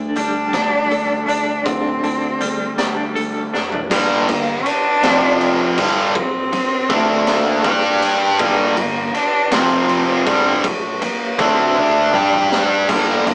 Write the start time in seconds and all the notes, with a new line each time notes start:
Already playing: D2 D3 D4 A4
0.16 D2 G3 D4, closed hi-hat
0.53 D2 D4, kick, snare, closed hi-hat
0.91 D2 A4, closed hi-hat
1.25 D2 D4, closed hi-hat
1.64 D2 D3 C4, kick, closed hi-hat
2.03 D2 D3, closed hi-hat
2.41 D2 G3, closed hi-hat
2.77 D2 G3 D4, snare, closed hi-hat
3.15 D2 A4, closed hi-hat
3.54 F1 D4, snare
3.72 floor tom
3.90 G1 G2 D3 G3 A#3, kick, crash
4.28 G1 G2 D3, ride
4.66 D4, ride
5.02 F1 F2 C3 F3, snare, ride
5.41 ride
5.78 G1 G2 D3 G3, kick, crash
6.15 C4, kick
6.53 muted picked electric bass stroke, muted distorted electric guitar stroke, ride
6.89 D2 D3 A3 D4, kick, ride
7.27 A#3, snare, ride
7.64 G2 G3 D4 G4, kick, ride
8.02 ride
8.39 G1 G2 D3 G3 A#3, kick, ride
8.77 G1 G2 D3, ride
9.14 D4, ride
9.51 F1 F2 C3 F3 C4, snare, ride
9.89 ride
10.26 G1 G2 D3 G3, kick, ride
10.64 A3, kick, ride
11.02 A#3, muted distorted electric guitar stroke, muted picked electric bass stroke, ride
11.39 D2 D3 A3 C4 D4, kick, ride
11.76 D4, high tom
12.14 G2 G3 D4 G4, mid tom
12.33 mid tom
12.52 snare
12.88 G1 G2 D3 G3 A#3, kick, crash
13.27 G1 G2 D3, ride